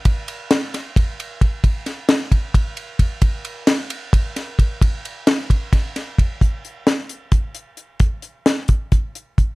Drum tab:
RD |xxxxxxx|xxxxxxx|xxxxxxx|xxxxxxx|
HH |-------|-------|-------|-------|
SD |--oo---|-oo----|--o--o-|--o-oo-|
BD |o---o-o|o--oo-o|o---o-o|o--oo-o|

RD |-------|-------|
HH |xxxxxxx|xxxxxxx|
SD |--o----|--o----|
BD |o---o--|o--oo-o|